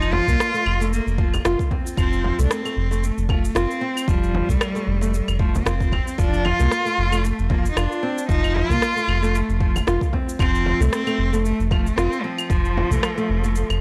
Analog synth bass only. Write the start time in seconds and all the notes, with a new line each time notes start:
Already playing: F1
0.28 C2
0.66 F1
1.06 F1
1.45 F1
1.97 F1
2.39 C2
2.77 F1
3.18 F1
3.55 F1
4.08 F1
4.49 C2
4.87 F1
5.28 F1
5.66 F1
6.19 F1
6.60 C2
6.98 F1
7.39 F1
7.76 F1
8.29 F1
8.69 C2
9.08 F1
9.49 F1
9.87 F1
10.39 F1
10.80 C2
11.18 F1
11.60 F1
11.97 F1
12.50 F1
12.91 C2
13.29 F1
13.70 F1